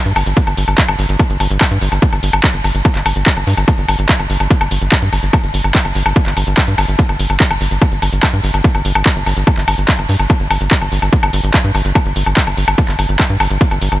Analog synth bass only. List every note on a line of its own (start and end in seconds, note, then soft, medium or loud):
0.06 0.13 G2 medium
0.16 0.23 G1 loud
0.26 0.34 G1 medium
0.47 0.54 G1 medium
0.57 0.65 G1 loud
0.68 0.75 G1 medium
0.88 0.96 G1 medium
0.99 1.06 G1 loud
1.09 1.17 G1 medium
1.30 1.37 G1 medium
1.40 1.48 G1 loud
1.51 1.58 G1 medium
1.71 1.79 G2 medium
1.82 1.89 G1 loud
1.92 1.99 G1 medium
2.13 2.20 G1 medium
2.23 2.30 G1 loud
2.33 2.41 G1 medium
2.54 2.61 G1 medium
2.64 2.72 G1 loud
2.75 2.82 G1 medium
2.95 3.03 G1 medium
3.06 3.13 G1 loud
3.16 3.23 G1 medium
3.37 3.44 G1 medium
3.47 3.54 G2 loud
3.57 3.65 G1 loud
3.78 3.86 G1 medium
3.88 3.96 G1 loud
3.99 4.06 G1 medium
4.20 4.27 G1 medium
4.30 4.37 G1 loud
4.40 4.48 G1 medium
4.61 4.68 G1 medium
4.71 4.79 G1 loud
4.82 4.89 G1 medium
5.02 5.10 G2 medium
5.13 5.20 G1 loud
5.23 5.30 G1 medium
5.44 5.51 G1 medium
5.54 5.61 G1 loud
5.64 5.72 G1 medium
5.85 5.92 G1 medium
5.95 6.03 G1 loud
6.06 6.13 G1 medium
6.26 6.34 G1 medium
6.37 6.44 G1 loud
6.47 6.54 G1 medium
6.68 6.75 G2 medium
6.78 6.86 G1 loud
6.88 6.96 G1 medium
7.09 7.17 G1 medium
7.20 7.27 G1 loud
7.30 7.37 G1 medium
7.51 7.58 G1 medium
7.61 7.68 G1 loud
7.71 7.79 G1 medium
7.92 7.99 G1 medium
8.02 8.10 G1 loud
8.13 8.20 G1 medium
8.33 8.41 G2 medium
8.44 8.51 G1 loud
8.54 8.61 G1 medium
8.75 8.82 G1 medium
8.85 8.92 G1 loud
8.95 9.03 G1 medium
9.16 9.23 G1 medium
9.26 9.34 G1 loud
9.37 9.44 G1 medium
9.57 9.65 G1 medium
9.68 9.75 G1 loud
9.78 9.86 G1 medium
9.99 10.06 G1 medium
10.09 10.17 G2 loud
10.20 10.27 G1 medium
10.40 10.48 G1 medium
10.51 10.58 G1 loud
10.61 10.68 G1 medium
10.82 10.89 G1 medium
10.92 10.99 G1 loud
11.02 11.10 G1 medium
11.23 11.30 G1 medium
11.33 11.41 G1 loud
11.44 11.51 G1 medium
11.64 11.72 G2 medium
11.75 11.82 G1 loud
11.85 11.92 G1 medium
12.06 12.13 G1 medium
12.16 12.23 G1 loud
12.26 12.34 G1 medium
12.47 12.54 G1 medium
12.57 12.65 G1 loud
12.68 12.75 G1 medium
12.88 12.96 G1 medium
12.99 13.06 G1 loud
13.09 13.17 G1 medium
13.30 13.37 G2 medium
13.40 13.48 G1 loud
13.51 13.58 G1 medium
13.71 13.79 G1 medium
13.82 13.89 G1 loud
13.92 13.99 G1 medium